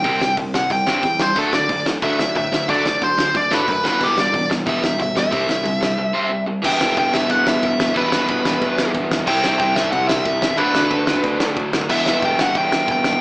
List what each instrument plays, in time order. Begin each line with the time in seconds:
Already playing: lead electric guitar G5
0.04 picked electric bass C2, overdriven electric guitar C3 G3 C4, kick, open hi-hat
0.21 picked electric bass C2, overdriven electric guitar C3 G3, snare
0.37 picked electric bass C2, overdriven electric guitar C3 G3, kick, open hi-hat
0.54 overdriven electric guitar C3 G3, lead electric guitar F#5, snare
0.70 picked electric bass C2, overdriven electric guitar C3 G3, lead electric guitar G5, kick, open hi-hat
0.87 picked electric bass G2, overdriven electric guitar C3 G3 C4, snare
1.03 picked electric bass E2, overdriven electric guitar C3 G3, kick, open hi-hat
1.20 overdriven electric guitar C3 G3, lead electric guitar C5, snare
1.36 picked electric bass D2, overdriven electric guitar D3 F#3 A3, distorted electric guitar D4, lead electric guitar A4, kick, open hi-hat
1.52 picked electric bass D2, overdriven electric guitar D3 F#3, distorted electric guitar A3, lead electric guitar D5, snare
1.69 picked electric bass D2, overdriven electric guitar D3 F#3, distorted electric guitar A3, kick, open hi-hat
1.86 picked electric bass D2, overdriven electric guitar D3 F#3, distorted electric guitar A3, snare
2.02 picked electric bass D2, overdriven electric guitar D3 F#3 A3, distorted electric guitar D4, lead electric guitar E5, kick, open hi-hat
2.19 picked electric bass D2, overdriven electric guitar D3 F#3, distorted electric guitar A3, snare
2.35 picked electric bass A2, overdriven electric guitar D3 F#3, distorted electric guitar A3, lead electric guitar E5, kick, open hi-hat
2.52 picked electric bass D2, overdriven electric guitar D3 F#3, distorted electric guitar A3, snare
2.68 picked electric bass D2, overdriven electric guitar D3 F#3 A3, distorted electric guitar D4, lead electric guitar D5, kick, open hi-hat
2.85 picked electric bass D2, overdriven electric guitar D3 F#3, distorted electric guitar A3, snare
3.01 picked electric bass D2, overdriven electric guitar D3 F#3, distorted electric guitar A3, lead electric guitar C5, kick, open hi-hat
3.18 overdriven electric guitar D3 F#3, distorted electric guitar A3, snare
3.34 picked electric bass D2, overdriven electric guitar D3 F#3, distorted electric guitar A3, lead electric guitar D5, kick, open hi-hat
3.51 picked electric bass A2, overdriven electric guitar D3 F#3 A3, distorted electric guitar D4, lead electric guitar B4, snare
3.67 picked electric bass F#2, overdriven electric guitar D3 F#3, distorted electric guitar A3, lead electric guitar B4, kick, open hi-hat
3.84 picked electric bass E1, distorted electric guitar E2 B2, overdriven electric guitar E3 G3 B3, lead electric guitar B4, snare
4.00 picked electric bass E1, distorted electric guitar E2 B2, overdriven electric guitar E3 G3 B3, lead electric guitar G4, kick, open hi-hat
4.17 picked electric bass E1, distorted electric guitar E2 B2, overdriven electric guitar E3 G3, lead electric guitar D5, snare
4.33 picked electric bass E1, distorted electric guitar E2 B2, overdriven electric guitar E3 G3, kick, open hi-hat
4.50 picked electric bass E1, distorted electric guitar E2 B2, overdriven electric guitar E3 G3, snare
4.66 picked electric bass E1, distorted electric guitar E2 B2, overdriven electric guitar E3 G3 B3, lead electric guitar E5, kick, open hi-hat
4.83 picked electric bass E1, distorted electric guitar E2 B2, overdriven electric guitar E3 G3, snare
4.99 picked electric bass B1, distorted electric guitar E2 B2, overdriven electric guitar E3 G3, lead electric guitar E5, kick, open hi-hat
5.15 picked electric bass D2, distorted electric guitar E2 B2, overdriven electric guitar E3 G3, lead electric guitar E5, snare
5.31 picked electric bass C2, overdriven electric guitar C3 G3 C4, kick, open hi-hat
5.48 picked electric bass C2, overdriven electric guitar C3 G3, snare
5.63 picked electric bass C2, overdriven electric guitar C3 G3, kick, open hi-hat
5.81 overdriven electric guitar C3 G3, snare
5.98 overdriven electric guitar C3 G3
6.13 overdriven electric guitar C3 G3 C4
6.30 overdriven electric guitar C3 G3
6.46 overdriven electric guitar C3 G3
6.62 picked electric bass E1, distorted electric guitar E2 B2, overdriven electric guitar E3 G3 B3 E4, lead electric guitar G5, kick, crash
6.81 picked electric bass E1, snare
6.97 picked electric bass E1, lead electric guitar G5, kick, ride
7.14 picked electric bass E1, lead electric guitar E5, snare
7.22 kick
7.30 picked electric bass E1, lead electric guitar F#5, kick, ride
7.47 lead electric guitar E5, snare
7.63 picked electric bass E1, kick, ride
7.80 picked electric bass E1, snare
7.88 kick
7.94 picked electric bass E1, distorted electric guitar E2 B2, overdriven electric guitar E3 G3 B3 E4, lead electric guitar B4, kick, ride
8.12 picked electric bass E1, snare
8.28 picked electric bass E1, kick, ride
8.45 picked electric bass E1, snare
8.53 kick
8.62 picked electric bass E1, kick, ride
8.78 snare
8.94 picked electric bass E1, kick, ride
9.11 picked electric bass E1, snare
9.19 kick
9.26 picked electric bass C2, overdriven electric guitar C3 G3 C4 E4, lead electric guitar G5, kick, crash
9.43 picked electric bass C2, snare
9.59 picked electric bass C2, lead electric guitar G5, kick, ride
9.76 picked electric bass C2, lead electric guitar E5, snare
9.84 kick
9.92 picked electric bass C2, lead electric guitar F#5, kick, ride
10.08 lead electric guitar E5, snare
10.25 picked electric bass C2, kick, ride
10.42 picked electric bass E2, snare
10.50 kick
10.57 picked electric bass D2, overdriven electric guitar D3 F#3 A3 D4, lead electric guitar B4, kick, ride
10.75 picked electric bass D2, snare
10.90 picked electric bass D2, kick, ride
11.07 picked electric bass D2, snare
11.16 kick
11.24 picked electric bass D2, kick, ride
11.40 snare
11.56 picked electric bass D2, kick, ride
11.73 picked electric bass F#2, snare
11.81 kick
11.89 picked electric bass E1, distorted electric guitar E2 B2, overdriven electric guitar E3 G3 B3 E4, lead electric guitar E5, kick, crash
12.05 picked electric bass E1, snare
12.22 picked electric bass E1, lead electric guitar G5, kick, ride
12.38 picked electric bass E1, lead electric guitar F#5, snare
12.47 kick
12.55 picked electric bass E1, lead electric guitar G5, kick, ride
12.72 snare
12.88 picked electric bass E1, lead electric guitar G5, kick, ride
13.04 picked electric bass E1, snare
13.13 kick